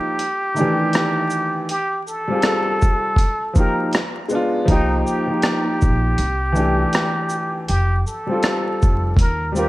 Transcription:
Already playing: upright piano F3 A#3 D#4 G4 A4, muted trumpet G4
0.19 closed hi-hat
0.54 upright piano D#3 A3, shaker
0.59 upright piano E3 D4 G4
0.93 cross-stick, closed hi-hat
1.30 shaker
1.69 muted trumpet G4, closed hi-hat
2.07 muted trumpet A4, shaker
2.28 upright piano G3 C4 F4
2.34 upright piano G#4
2.41 upright piano A4, cross-stick, closed hi-hat
2.82 kick, shaker
3.16 kick, closed hi-hat
3.53 upright piano F3 A#3 D#4, muted trumpet A#4, kick, shaker
3.60 upright piano G4
3.93 cross-stick, closed hi-hat
4.28 upright piano G#3 B3, shaker
4.33 upright piano D4 F4
4.65 upright bass C2, upright piano F3 A#3, muted trumpet D#4, kick, closed hi-hat
4.70 upright piano D#4 G4
5.06 muted trumpet G4, shaker
5.27 upright piano F3 A#3
5.31 upright piano D#4 G4
5.42 cross-stick, closed hi-hat
5.81 upright bass A#1, kick, shaker
6.18 upright bass C2, closed hi-hat
6.53 upright piano E3 A3, shaker
6.57 upright piano D4 G4
6.93 cross-stick, closed hi-hat
7.29 shaker
7.68 upright bass F1, muted trumpet G4, closed hi-hat
8.07 muted trumpet A4, shaker
8.27 upright piano G3 C4
8.31 upright piano F4 A4
8.43 cross-stick, closed hi-hat
8.82 upright bass F1, kick, shaker
9.17 upright bass D#2, muted trumpet A#4, kick, closed hi-hat
9.52 upright piano G3 C4, shaker
9.56 upright piano F4 A#4, muted trumpet G4

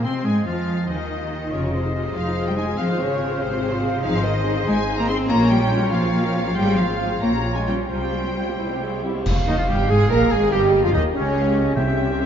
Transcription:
Already playing: flute section C5
0.03 double bass section C3, clarinet C4, viola section C4, french horn section C4, cello section C4, oboe C4, violin section C6
0.24 double bass section G#2, viola section G#3, french horn section G#3, clarinet G#3, cello section G#3, oboe G#4, flute section D#5, violin section G#5
0.46 double bass section F2, viola section F3, french horn section F3, clarinet F3, cello section F3, oboe F4, violin section F5
0.88 double bass section D#2, viola section D#3, cello section D#3, clarinet D#3, french horn section D#3, oboe D#4, violin section D#5, flute section G#5
1.10 flute section F5
1.31 flute section D#5
1.52 double bass section F1, cello section C#3, viola section F4 G#4, clarinet G#4, violin section C#5, oboe D#5
1.63 viola section D#4 F4
1.73 cello section C3, viola section F4 G#4, violin section C5
1.84 viola section D#4 F4
1.94 french horn section D#4 G#4, viola section F4 G#4
2.05 viola section D#4 F4
2.15 double bass section F1, cello section F3, viola section F4 G#4, flute section C5, violin section F5
2.25 viola section D#4 F4
2.36 viola section F4 G#4
2.46 cello section G3, viola section D#4 F4, violin section G5
2.57 cello section G#3, french horn section D#4 G#4, viola section F4 G#4, violin section G#5
2.67 viola section D#4 F4
2.77 double bass section G#1, cello section F3, viola section C4 G#4, flute section C5, oboe F5, violin section F5
2.88 viola section F4 C5
2.98 cello section C#3, viola section C4 G#4, violin section C#5
3.08 viola section F4 C5
3.18 viola section C4 G#4, french horn section F4 G#4
3.30 viola section F4 C5
3.40 double bass section G#1, cello section C3, viola section C4 G#4, violin section C5, flute section F5
3.51 viola section F4 C5
3.61 viola section C4 G#4
3.71 viola section F4 C5
3.81 viola section C4 G#4, french horn section F4 G#4
3.92 viola section F4 C5
4.02 double bass section G#1, cello section F3, viola section D#4 G#4, clarinet G#4, oboe C5, flute section D#5, violin section F5
4.14 viola section C4 C5
4.24 cello section D#3, viola section D#4 G#4, violin section D#5
4.35 viola section C4 C5
4.43 french horn section C4 G#4, viola section D#4 G#4
4.56 viola section C4 C5
4.66 double bass section G#1, cello section G#3, viola section D#4 G#4, violin section G#5
4.77 viola section C4 C5
4.87 viola section D#4 G#4
4.98 cello section A#3, viola section C4 C5, violin section A#5
5.08 french horn section C4 G#4, cello section C4, viola section D#4 G#4, violin section C6
5.19 viola section C4 C5
5.28 double bass section A#1, viola section A#3 F4, cello section A#3, clarinet F4, oboe C#5, flute section C#5, violin section A#5
5.40 viola section C#4 A#4
5.50 cello section G3, viola section A#3 F4, violin section G5
5.61 viola section C#4 A#4
5.71 viola section A#3 F4, french horn section C#4 F4
5.82 viola section C#4 A#4
5.92 double bass section A#1, cello section F3, viola section A#3 F4, flute section C5, violin section F5
6.03 viola section C#4 A#4
6.13 viola section A#3 F4, flute section A#4
6.23 viola section C#4 A#4
6.34 viola section A#3 F4, french horn section C#4 F4, flute section F5
6.45 viola section C#4 A#4
6.55 double bass section G#1, cello section G3, viola section G#3 F4, oboe C5, violin section G5
6.66 viola section C4 G#4
6.76 cello section F3, viola section G#3 F4, violin section F5
6.87 viola section C4 G#4
6.99 viola section G#3 F4, french horn section C4 F4
7.10 viola section C4 G#4
7.21 double bass section A#1, viola section A#3 F4, cello section A#3, flute section C#5, oboe C#5, violin section A#5
7.32 viola section C#4 G4
7.43 viola section A#3 F4
7.54 cello section G#3, viola section C#4 G4, violin section G#5
7.65 cello section G3, viola section A#3 F4, french horn section C#4 F4, violin section G5
7.77 viola section C#4 G4
7.89 double bass section C2, viola section G3 F4, cello section G3, clarinet F4, flute section C5, oboe C5, violin section G5
8.01 viola section C4 G4
8.13 viola section G3 F4
8.24 viola section C4 G4
8.36 viola section G3 F4, french horn section C4 F4
8.48 viola section C4 G4
8.58 double bass section C2, viola section G3 E4, clarinet E4
8.71 viola section C4 G4
8.81 viola section G3 E4, clarinet G#4
8.93 viola section C4 G4
9.04 viola section G3 E4, french horn section C4 E4, clarinet G4
9.16 viola section C4 G4
9.25 timpani F2, flute section F5, concert bass drum, crash
9.47 double bass section D#2, cello section D#2, viola section D#3, french horn section D#4, oboe D#4, violin section D#4 D#5, clarinet D#4
9.58 cello section F2, viola section F3, oboe F4, clarinet F4, violin section F4 F5, french horn section F4
9.68 double bass section G1, cello section G2, viola section G3, clarinet G4, french horn section G4, oboe G4, violin section G4 G5
9.89 double bass section G#1, cello section G#2, viola section G#3, clarinet G#4, french horn section G#4, oboe G#4, violin section G#4 G#5
10.09 double bass section A#1, cello section A#2, viola section A#3, clarinet A#4, french horn section A#4, violin section A#4 A#5, oboe A#4
10.31 double bass section G#1, cello section G#2, viola section G#3, french horn section G#4, oboe G#4, clarinet G#4, violin section G#4 G#5
10.51 double bass section G1, cello section G2, viola section G3, clarinet G4, french horn section G4, violin section G4 G5, oboe G4, flute section D#5
10.83 cello section F2, viola section F3, clarinet F4, french horn section F4, violin section F4 F5, oboe F4
10.92 double bass section D#2, cello section D#2, viola section D#3, clarinet D#4, french horn section D#4, violin section D#4 D#5, oboe D#4
11.14 double bass section C#2, cello section C#2, viola section C#3, clarinet C#4, french horn section C#4, violin section C#4 C#5, oboe C#4, flute section C#5
11.36 flute section F5
11.56 flute section D#5
11.75 double bass section C2, timpani C3, cello section C3, viola section C4 G4, clarinet E5, flute section E5, violin section E5, oboe G5

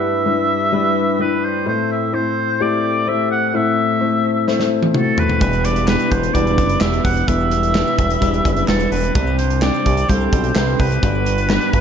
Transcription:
Already playing: grand piano G2 G3 D4 E4 B4, oboe E5
0.26 grand piano G3 D4 E4 B4
0.72 grand piano G3 D4 E4 B4
1.19 grand piano G3 D4 E4 B4, oboe B4
1.44 oboe C5
1.66 grand piano A2 A3 C4 E4 C5, oboe C5
1.92 oboe E5
2.12 grand piano A3 C4 E4 C5, oboe C5
2.60 grand piano A3 C4 E4 G4, oboe D5
3.07 grand piano A3 C4 E4 C5, oboe E5
3.31 oboe F#5
3.48 oboe F#5
3.53 grand piano A2 A3 C4 E4 C5, oboe E5
4.00 grand piano A3 C4 E4 C5
4.47 grand piano A3 C4 E4 C5, snare
4.60 snare
4.83 high tom
4.94 grand piano A3 C4 E4 F#4, oboe A4, mid tom
5.18 oboe B4, floor tom
5.29 floor tom
5.40 analog synth bass E1, clean electric guitar E2 B2 G3 B3 D4 E4, grand piano E3 G3 D4 E4 B4, oboe B4, kick, closed hi-hat, shaker
5.53 closed hi-hat, shaker
5.64 clean electric guitar G3 B3 D4 E4, oboe D5, closed hi-hat, shaker
5.76 closed hi-hat, shaker
5.87 clean electric guitar E2 B2 G3 B3 D4 E4, grand piano G3 D4 E4 B4, oboe B4, snare, clap, shaker
5.99 closed hi-hat, shaker
6.11 analog synth bass E1, clean electric guitar G3 B3 D4 E4, oboe C5, kick, closed hi-hat, shaker
6.23 closed hi-hat, shaker
6.34 analog synth bass E1, grand piano G3 D4 E4 B4, clean electric guitar G3 B3 D4 E4, oboe D5, kick, closed hi-hat, shaker
6.46 closed hi-hat, shaker
6.57 analog synth bass F#1, clean electric guitar G3 B3 D4 E4, kick, closed hi-hat, shaker
6.69 closed hi-hat, shaker
6.80 analog synth bass E1, clean electric guitar E2 B2 G3 B3 D4 E4, grand piano G3 D4 E4 B4, oboe E5, snare, clap, shaker
6.92 closed hi-hat, shaker
7.04 analog synth bass E1, clean electric guitar G3 B3 D4 E4, oboe F#5, kick, open hi-hat, shaker
7.16 closed hi-hat, shaker
7.27 analog synth bass E1, clean electric guitar E2 B2 G3 B3 D4 E4, grand piano E3 G3 D4 E4 B4, oboe E5, kick, closed hi-hat, shaker
7.39 shaker
7.51 clean electric guitar G3 B3 D4 E4, closed hi-hat, shaker
7.63 closed hi-hat, shaker
7.74 clean electric guitar E2 B2 G3 B3 D4 E4, grand piano G3 D4 E4 B4, snare, clap, shaker
7.87 shaker
7.98 analog synth bass E1, clean electric guitar G3 B3 D4 E4, kick, closed hi-hat, shaker
8.10 closed hi-hat, shaker
8.21 analog synth bass E1, grand piano G3 D4 E4 B4, clean electric guitar G3 B3 D4 E4, kick, closed hi-hat, shaker
8.33 closed hi-hat, shaker
8.44 analog synth bass F#1, clean electric guitar G3 B3 D4 E4, kick, closed hi-hat, shaker
8.56 closed hi-hat, shaker
8.68 analog synth bass E1, clean electric guitar E2 B2 G3 B3 D4 E4, grand piano G3 D4 E4 B4, oboe A4, snare, clap, shaker
8.79 closed hi-hat, shaker
8.91 analog synth bass E1, clean electric guitar G3 B3 D4 E4, oboe B4, open hi-hat, shaker
9.04 closed hi-hat, shaker
9.15 analog synth bass C2, clean electric guitar C3 G3 C4 D4 G4, grand piano C3 G3 C4 D4 C5, oboe B4, kick, closed hi-hat, shaker
9.27 shaker
9.38 clean electric guitar C4 D4 G4, oboe C5, closed hi-hat, shaker
9.50 closed hi-hat, shaker
9.62 clean electric guitar C3 G3 C4 D4 G4, grand piano G3 C4 D4 C5, oboe D5, snare, clap, shaker
9.74 shaker
9.86 analog synth bass C2, clean electric guitar C4 D4 G4, kick, closed hi-hat, shaker
9.97 closed hi-hat, shaker
10.09 analog synth bass C2, clean electric guitar G3 C4 D4 G4, grand piano G3 C4 D4 A4, oboe C5, kick, closed hi-hat, shaker
10.20 shaker
10.32 analog synth bass B1, clean electric guitar C4 D4 G4, kick, closed hi-hat, shaker
10.43 closed hi-hat, shaker
10.55 analog synth bass C2, clean electric guitar C3 G3 C4 D4 G4, grand piano G3 C4 D4 B4, oboe C5, snare, clap, shaker
10.66 shaker
10.79 analog synth bass C2, clean electric guitar C4 D4 G4, oboe B4, kick, open hi-hat, shaker
10.90 closed hi-hat, shaker
11.03 analog synth bass G1, grand piano G2 G3 D4 F#4 B4, clean electric guitar G3 B3 D4 F#4, kick, closed hi-hat, shaker
11.14 shaker
11.25 clean electric guitar B3 D4 F#4, closed hi-hat, shaker
11.38 closed hi-hat, shaker
11.49 clean electric guitar G3 B3 D4 F#4, grand piano G3 D4 F#4 B4, snare, clap, shaker
11.61 closed hi-hat, shaker
11.72 analog synth bass G1, clean electric guitar B3 D4 F#4, kick, closed hi-hat, shaker

